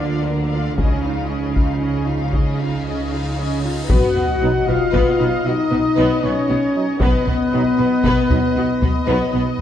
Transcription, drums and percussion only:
0.78 taiko
1.56 taiko
2.34 taiko
3.89 taiko
4.93 taiko
7.00 taiko
7.27 taiko low
8.04 taiko
8.30 taiko low
8.82 taiko low

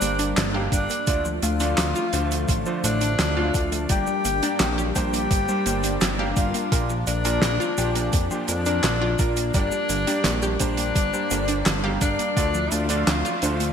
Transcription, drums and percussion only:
0.01 closed hi-hat, cabasa
0.19 closed hi-hat, cabasa
0.37 snare, clap, closed hi-hat, cabasa
0.72 kick, closed hi-hat, cabasa
0.90 closed hi-hat, cabasa
1.07 kick, closed hi-hat, cabasa
1.25 cabasa
1.42 closed hi-hat, cabasa
1.60 closed hi-hat, cabasa
1.78 snare, clap, closed hi-hat, cabasa
1.95 cabasa
2.13 closed hi-hat, cabasa
2.31 closed hi-hat, cabasa
2.48 kick, closed hi-hat, cabasa
2.66 cabasa
2.84 closed hi-hat, cabasa
3.01 closed hi-hat, cabasa
3.19 snare, clap, closed hi-hat, cabasa
3.54 kick, closed hi-hat, cabasa
3.72 closed hi-hat, cabasa
3.89 kick, closed hi-hat, cabasa
4.07 cabasa
4.25 closed hi-hat, cabasa
4.42 closed hi-hat, cabasa
4.60 snare, clap, closed hi-hat, cabasa
4.79 cabasa
4.95 kick, closed hi-hat, cabasa
5.13 closed hi-hat, cabasa
5.31 kick, closed hi-hat, cabasa
5.48 cabasa
5.66 closed hi-hat, cabasa
5.83 closed hi-hat, cabasa
6.01 snare, clap, closed hi-hat, cabasa
6.36 kick, closed hi-hat, cabasa
6.54 closed hi-hat, cabasa
6.72 kick, closed hi-hat, cabasa
6.90 cabasa
7.07 closed hi-hat, cabasa
7.25 closed hi-hat, cabasa
7.42 snare, clap, closed hi-hat, cabasa
7.61 cabasa
7.78 closed hi-hat, cabasa
7.95 closed hi-hat, cabasa
8.13 kick, closed hi-hat, cabasa
8.31 cabasa
8.48 closed hi-hat, cabasa
8.66 closed hi-hat, cabasa
8.83 snare, clap, closed hi-hat, cabasa
9.19 kick, closed hi-hat, cabasa
9.37 closed hi-hat, cabasa
9.54 kick, closed hi-hat, cabasa
9.71 cabasa
9.89 closed hi-hat, cabasa
10.07 closed hi-hat, cabasa
10.24 snare, clap, closed hi-hat, cabasa
10.42 cabasa
10.59 kick, closed hi-hat, cabasa
10.77 closed hi-hat, cabasa
10.96 kick, closed hi-hat, cabasa
11.14 cabasa
11.31 closed hi-hat, cabasa
11.48 closed hi-hat, cabasa
11.66 snare, clap, closed hi-hat, cabasa
12.01 kick, closed hi-hat, cabasa
12.19 closed hi-hat, cabasa
12.37 kick, closed hi-hat, cabasa
12.54 cabasa
12.72 closed hi-hat, cabasa
12.89 closed hi-hat, cabasa
13.07 snare, clap, closed hi-hat, cabasa
13.25 cabasa
13.42 closed hi-hat, cabasa
13.60 closed hi-hat, cabasa

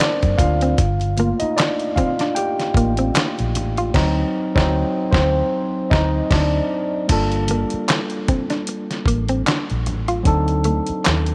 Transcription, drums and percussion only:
0.00 snare, clap, closed hi-hat
0.23 kick, closed hi-hat
0.39 kick, closed hi-hat, low conga
0.61 closed hi-hat
0.78 kick, closed hi-hat, muted conga
1.00 closed hi-hat, muted conga
1.17 closed hi-hat, high conga
1.40 closed hi-hat
1.57 snare, clap, closed hi-hat, muted conga
1.80 closed hi-hat
1.96 kick, closed hi-hat, high conga, low conga
2.19 snare, closed hi-hat
2.36 closed hi-hat
2.60 snare, closed hi-hat
2.74 kick, closed hi-hat
2.97 closed hi-hat
3.14 snare, clap, closed hi-hat, muted conga, high conga
3.38 closed hi-hat, muted conga
3.55 closed hi-hat, low conga
3.77 closed hi-hat
3.94 kick, snare, crash
4.56 kick, snare
5.13 kick, snare
5.91 kick, snare
6.31 kick, snare, crash
7.09 kick, closed hi-hat, crash
7.32 closed hi-hat
7.48 closed hi-hat, high conga
7.70 closed hi-hat
7.88 snare, clap, closed hi-hat
8.10 closed hi-hat
8.28 kick, closed hi-hat, high conga, low conga
8.50 snare, closed hi-hat
8.67 closed hi-hat
8.91 snare, closed hi-hat
9.06 kick, closed hi-hat
9.28 closed hi-hat
9.46 snare, clap, closed hi-hat, high conga
9.70 closed hi-hat, muted conga
9.86 closed hi-hat, low conga
10.08 closed hi-hat
10.25 kick, closed hi-hat
10.48 closed hi-hat
10.64 closed hi-hat, high conga
10.87 closed hi-hat
11.05 snare, clap, closed hi-hat
11.26 closed hi-hat

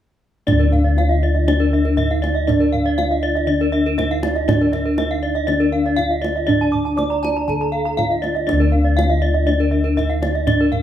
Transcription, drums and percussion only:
0.48 kendang high, kendang low
0.61 kendang slap
0.73 kendang low
0.98 kendang high
1.11 kendang slap
1.36 kendang slap
1.48 kendang high
1.60 kendang slap
1.85 kendang slap
1.98 kendang low
2.11 kendang slap
2.24 kendang high
2.37 kendang slap
2.49 kendang low
2.62 kendang slap
2.74 kendang low
2.99 kendang high
3.12 kendang slap
3.37 kendang slap
3.61 kendang slap
3.86 kendang slap
3.99 kendang high, kendang low
4.11 kendang slap
4.23 kendang high
4.36 kendang slap
4.49 kendang high, kendang low
4.62 kendang slap
4.73 kendang low
4.98 kendang high
5.11 kendang slap
5.36 kendang slap
5.48 kendang high
5.61 kendang slap
5.86 kendang slap
5.99 kendang low
6.12 kendang slap
6.24 kendang high
6.37 kendang slap
6.49 kendang low
6.62 kendang slap
6.74 kendang low
6.87 kendang slap
6.99 kendang high
7.11 kendang slap
7.24 kendang high
7.37 kendang slap
7.49 kendang low
7.61 kendang slap
7.87 kendang slap
7.99 kendang high, kendang low
8.12 kendang slap
8.24 kendang high
8.37 kendang slap
8.49 kendang high, kendang low
8.61 kendang slap
8.99 kendang high
9.12 kendang slap
9.36 kendang slap
9.49 kendang high
9.61 kendang slap
9.87 kendang slap
9.99 kendang low
10.11 kendang slap
10.23 kendang high
10.35 kendang slap
10.47 kendang low
10.60 kendang slap
10.72 kendang low

